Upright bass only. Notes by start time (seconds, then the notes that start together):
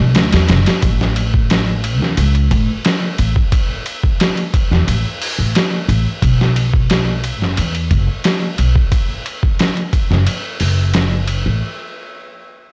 0.00 B1
0.15 D2
0.33 E2
0.49 F#1
0.83 A1
2.01 E2
2.18 C#2
2.51 A2
3.19 A1
4.71 E2
4.87 A1
5.39 A1
5.89 A1
6.22 B1
7.41 F#1
7.58 E2
7.91 F#1
8.59 B1
10.11 F#1
10.61 F#1
11.46 A1